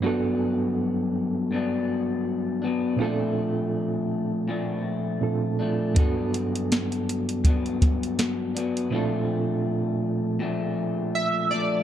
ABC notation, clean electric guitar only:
X:1
M:4/4
L:1/8
Q:"Swing 16ths" 1/4=81
K:G
V:1 name="Clean electric guitar"
[G,,F,B,D]4 [G,,F,B,D]3 [F,B,D] | [_B,,=F,A,D]4 [B,,F,A,D]3 [F,A,D] | [G,,F,B,D]4 [G,,F,B,D]3 [F,B,D] | [_B,,=F,A,D]4 [B,,F,A,D]3 [F,A,D] |]